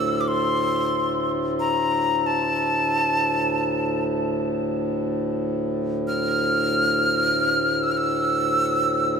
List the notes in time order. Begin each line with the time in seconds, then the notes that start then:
Already playing: D2 A2 E6 A6
0.21 D6
0.28 C6
1.60 A#5
2.26 A5
6.08 F6
7.83 E6
7.92 F6
7.97 E6